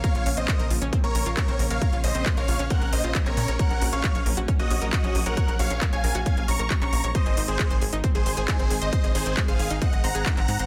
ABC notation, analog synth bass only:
X:1
M:4/4
L:1/16
Q:1/4=135
K:Bbm
V:1 name="Analog synth bass" clef=bass
z B,,, B,,, B,,, z B,,, B,,, B,,, z B,,, B,,, B,,, z B,,, B,,, B,,, | z B,,, B,,, B,,, z B,,, B,,, B,,, z B,,, B,,, B,,, z B,,, B,, B,,, | z B,,, B,,, B,,, z B,,, B,,, B,,, z B,,, B,,, B,,, z B,,, B,,, B,,, | z B,,, B,,, B,,, z B,,, B,,, B,,, z B,,, B,,, B,,, z B,,, B,,, B,,, |
z A,,, A,,, A,,, z A,,, A,,, A,,, z A,,, A,,, A,,, z A,,, A,,, A,,, | z A,,, A,,, A,,, z A,,, A,,, A,,, z A,,, A,,, A,,, z A,,, A,, A,,, |]